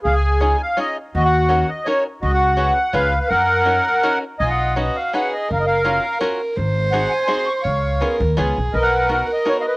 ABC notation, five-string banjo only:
X:1
M:3/4
L:1/8
Q:"Swing" 1/4=166
K:F#
V:1 name="Five-string banjo"
z2 [CDEG] z [CDEG] z | z2 [CDFA] z [CDFA] z | z2 [CFGB] z [CEGB] z | z2 [CDFA] z [CDFA] z |
z2 [CDFB] z [CDFB] z | z2 [CEFA] z [CEFA] z | z2 [^B,DFG] z [B,DFG] z | z2 [B,CEG] z [B,CEG] z |
z2 [B,DFA] z [B,DFA] z |]